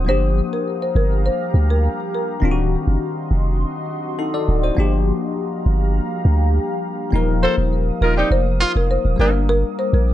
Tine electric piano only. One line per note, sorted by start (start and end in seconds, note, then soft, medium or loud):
0.05 2.37 F3 medium
0.05 2.38 A#3 medium
0.05 2.39 D4 medium
0.10 2.40 G4 medium
2.40 4.73 D#3 medium
2.40 4.73 C4 medium
2.40 3.87 D4 medium
2.45 2.50 F4 medium
2.51 3.91 F#4 medium
4.19 4.34 D#4 medium
4.19 4.33 A4 medium
4.34 4.62 A4 medium
4.34 4.62 D5 medium
4.63 4.92 F#4 medium
4.63 4.91 C5 medium
4.75 7.08 F3 medium
4.75 7.08 A#3 medium
4.75 7.09 D4 medium
4.80 7.10 G4 medium
7.11 7.19 E3 medium
7.11 9.15 A#3 medium
7.11 9.15 D#4 medium
7.16 9.17 F3 medium
7.16 9.16 A#4 medium
9.16 10.14 G3 medium
9.16 10.14 A#3 medium
9.16 10.14 D4 medium
9.21 10.14 A#4 medium